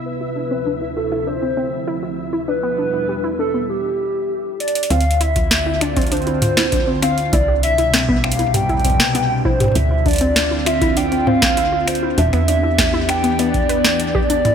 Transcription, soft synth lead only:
\new Staff \with { instrumentName = "Soft synth lead" } { \time 4/4 \key d \dorian \tempo 4 = 99 b'4. a'8 c''4 r4 | b'4. a'8 g'4. d''8 | f''8 e''4 d''8 c''4. f''8 | d''8 e''4 f''8 g''4. c''8 |
e''8 d''4 e''8 g''8 f''4 c''8 | e''4. g''8 d''4. d''8 | }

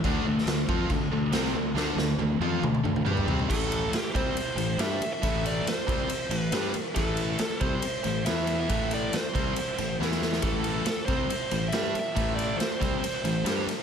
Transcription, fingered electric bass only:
\new Staff \with { instrumentName = "Fingered electric bass" } { \clef bass \time 4/4 \key a \minor \tempo 4 = 138 d,8 d,8 d,8 f,8 d,8 d,8 c,8 d,8 | d,8 d,8 d,8 f,8 d,8 d,8 g,8 c,8 | a,,4 r8 c,8 r8 a,,8 g,8 r8 | a,,4 r8 c,8 r8 a,,8 g,8 r8 |
a,,4 r8 c,8 r8 a,,8 e,4 | a,,4 r8 c,8 r8 a,,8 e,4 | a,,4 r8 c,8 r8 a,,8 g,8 r8 | a,,4 r8 c,8 r8 a,,8 g,8 r8 | }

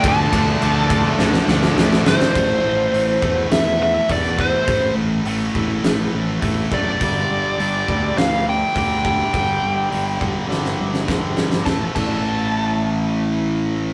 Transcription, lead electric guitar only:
\new Staff \with { instrumentName = "Lead electric guitar" } { \time 4/4 \key a \minor \tempo 4 = 103 a''2. r8 c''8~ | c''2 e''8 e''8 d''8 c''8~ | c''8 r2. d''8~ | d''2 f''8 g''8 g''8 g''8~ |
g''2. r4 | a''8 a''2.~ a''8 | }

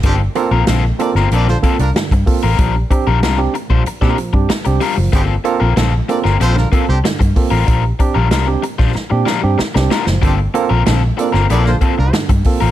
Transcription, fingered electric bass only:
\new Staff \with { instrumentName = "Fingered electric bass" } { \clef bass \time 4/4 \key g \minor \tempo 4 = 94 g,,8 r16 bes,,16 bes,,8 r16 g,,16 bes,,8 r16 c,16 r16 g,16 r16 a,,16 | bes,,8 r16 bes,,16 c,8 r16 bes,,16 r16 bes,16 r16 g,16 r16 c,16 r16 fis,,16 | g,,8 r16 bes,,16 bes,,8 r16 g,,16 bes,,8 r16 c,16 r16 g,16 r16 a,,16 | bes,,8 r16 bes,,16 c,8 r16 bes,,16 r16 bes,16 r16 g,16 r16 c,16 r16 fis,,16 |
g,,8 r16 bes,,16 bes,,8 r16 g,,16 bes,,8 r16 c,16 r16 g,16 r16 a,,16 | }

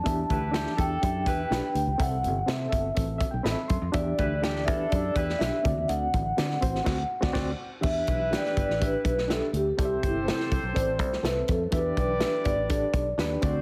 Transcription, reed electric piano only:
<<
  \new Staff \with { instrumentName = "Reed electric piano" } { \time 4/4 \key e \minor \tempo 4 = 123 <d' fis' g' e''>8. r16 <d' g' e''>8 <d' g' e''>8 <d' g' e''>8. r16 <d' fis' g' b'>8. r16 | <c' a' e''>8. r16 <c' a' c''>8 <c' a' e''>8 <c' a' e''>8. r16 <c' a' dis'' e''>8. r16 | <d' fis' g' e''>8. r16 <d' g' g''>8 <d' b'>8 <d' g' e''>8. r16 <d' g' e''>8 <c' fis' d''>8~ | <c' fis' d''>8. r16 <c' fis' d''>8 <c' fis' c''>8 <c' fis'>8 r16 <c' fis' d''>16 <c' fis' d''>8 r8 |
<d' g' e''>8. r16 <d' g' fis'' g''>8. r16 <d' g' e''>8. r16 <d' g' e''>8. r16 | <c' a' d'' e''>8. r16 <c' a' c''>8. r16 <c' a' d''>8. r16 <c' a' e''>8. r16 | <d' fis' g' e''>8. r16 <d' g' e''>8. r16 <d' g' a'>8. r16 <d' g' b'>8 <c' fis' d''>8 | }
  \new Staff \with { instrumentName = "Reed electric piano" } { \clef bass \time 4/4 \key e \minor e4. r2 r8 | c4. r4 e''16 g''16 b''8 c'''8 | e4. r2 d8~ | d4 r2. |
e4. r2 r8 | c4. r2 r8 | e4. r2 d8 | }
>>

